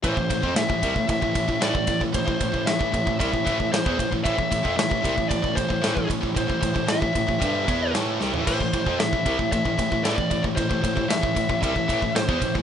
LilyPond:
<<
  \new Staff \with { instrumentName = "Lead electric guitar" } { \time 4/4 \key a \minor \tempo 4 = 114 c''4 e''4 e''4 d''8. r16 | c''4 e''4 e''4 c''8. r16 | e''4 e''4 d''8 c''4 r8 | c''4 e''4 e''4 r4 |
c''4 e''4 e''4 d''8. r16 | c''4 e''4 e''4 c''8. r16 | }
  \new Staff \with { instrumentName = "Distorted electric guitar" } { \clef bass \time 4/4 \key a \minor <a, e>16 <a, e>16 <a, e>16 <f c'>16 <a, e>16 <a, e>16 <c g>16 <a, e>16 <a, e>16 <a, e>16 <a, e>16 <a, e>16 <a, e>16 <a, e>16 <a, e>16 <a, e>16 | <a, e>16 <a, e>16 <a, e>16 <a, e>16 <a, e>16 <a, e>16 <a, e>16 <a, e>16 <c g>16 <a, e>16 <a, e>16 <a, e>16 <a, e>16 <e b>16 <a, e>16 <a, e>16 | <a, e>16 <a, e>16 <a, e>16 <f c'>16 <a, e>16 <a, e>16 <c g>16 <a, e>16 <a, e>16 <a, e>16 <a, e>16 <a, e>16 <a, e>16 <a, e>16 <a, e>16 <a, e>16 | <a, e>16 <a, e>16 <a, e>16 <a, e>16 <a, e>16 <a, e>16 <a, e>16 <a, e>16 <g, d g>8 <e b e'>8 <a, e a>8 <c g>16 <a, e>16 |
<a, e>16 <a, e>16 <a, e>16 <f c'>16 <a, e>16 <a, e>16 <c g>16 <a, e>16 <a, e>16 <a, e>16 <a, e>16 <a, e>16 <a, e>16 <a, e>16 <a, e>16 <a, e>16 | <a, e>16 <a, e>16 <a, e>16 <a, e>16 <a, e>16 <a, e>16 <a, e>16 <a, e>16 <c g>16 <a, e>16 <a, e>16 <a, e>16 <a, e>16 <e b>16 <a, e>16 <a, e>16 | }
  \new Staff \with { instrumentName = "Distorted electric guitar" } { \clef bass \time 4/4 \key a \minor <a, e>16 <a, e>16 <a, e>16 <f c'>16 <a, e>16 <a, e>16 <c g>16 <a, e>16 <a, e>16 <a, e>16 <a, e>16 <a, e>16 <a, e>16 <a, e>16 <a, e>16 <a, e>16 | <a, e>16 <a, e>16 <a, e>16 <a, e>16 <a, e>16 <a, e>16 <a, e>16 <a, e>16 <c g>16 <a, e>16 <a, e>16 <a, e>16 <a, e>16 <e b>16 <a, e>16 <a, e>16 | <a, e>16 <a, e>16 <a, e>16 <f c'>16 <a, e>16 <a, e>16 <c g>16 <a, e>16 <a, e>16 <a, e>16 <a, e>16 <a, e>16 <a, e>16 <a, e>16 <a, e>16 <a, e>16 | <a, e>16 <a, e>16 <a, e>16 <a, e>16 <a, e>16 <a, e>16 <a, e>16 <a, e>16 <g, d g>8 <e b e'>8 <a, e a>8 <c g>16 <a, e>16 |
<a, e>16 <a, e>16 <a, e>16 <f c'>16 <a, e>16 <a, e>16 <c g>16 <a, e>16 <a, e>16 <a, e>16 <a, e>16 <a, e>16 <a, e>16 <a, e>16 <a, e>16 <a, e>16 | <a, e>16 <a, e>16 <a, e>16 <a, e>16 <a, e>16 <a, e>16 <a, e>16 <a, e>16 <c g>16 <a, e>16 <a, e>16 <a, e>16 <a, e>16 <e b>16 <a, e>16 <a, e>16 | }
  \new Staff \with { instrumentName = "Bass clarinet" } { \clef bass \time 4/4 \key a \minor a,16 a,16 a,16 f,16 a,16 a,16 c,16 a,16 a,16 a,16 a,16 a,16 a,16 a,16 a,16 a,16 | a,16 a,16 a,16 a,16 a,16 a,16 a,16 a,16 c,16 a,16 a,16 a,16 a,16 e,16 a,16 a,16 | a,16 a,16 a,16 f,16 a,16 a,16 c,16 a,16 a,16 a,16 a,16 a,16 a,16 a,16 a,16 a,16 | a,16 r16 a,16 a,16 a,16 a,16 a,16 a,16 g,8 e,8 a,8 c,16 a,16 |
a,16 a,16 a,16 f,16 a,16 a,16 c,16 a,16 a,16 a,16 a,16 a,16 a,16 a,16 a,16 a,16 | a,16 a,16 a,16 a,16 a,16 a,16 a,16 a,16 c,16 a,16 a,16 a,16 a,16 e,16 a,16 a,16 | }
  \new DrumStaff \with { instrumentName = "Drums" } \drummode { \time 4/4 <bd cymr>16 bd16 <bd cymr>16 bd16 <cymr sn>16 bd16 <bd cymr>16 bd16 <bd cymr>16 bd16 <bd cymr>16 bd16 <cymr sn>16 bd16 <bd cymr>16 bd16 | <bd cymr>16 bd16 <bd cymr>16 bd16 <cymr sn>16 bd16 <bd cymr>16 bd16 <bd cymr>16 bd16 <bd cymr>16 bd16 <cymr sn>16 bd16 <bd cymr>16 bd16 | <bd cymr>16 bd16 <bd cymr>16 bd16 <cymr sn>16 bd16 <bd cymr>16 bd16 <bd cymr>16 bd16 <bd cymr>16 bd16 <cymr sn>16 bd16 <bd cymr>16 bd16 | <bd cymr>16 bd16 <bd cymr>16 bd16 <cymr sn>16 bd16 <bd cymr>16 bd16 <bd cymr>8 <bd cymr>8 <cymr sn>8 sn16 tomfh16 |
<cymc bd cymr>16 bd16 <bd cymr>16 bd16 <cymr sn>16 bd16 <bd cymr>16 bd16 <bd cymr>16 bd16 <bd cymr>16 bd16 <cymr sn>16 bd16 <bd cymr>16 bd16 | <bd cymr>16 bd16 <bd cymr>16 bd16 <cymr sn>16 bd16 <bd cymr>16 bd16 <bd cymr>16 bd16 <bd cymr>16 bd16 <cymr sn>16 bd16 <bd cymr>16 bd16 | }
>>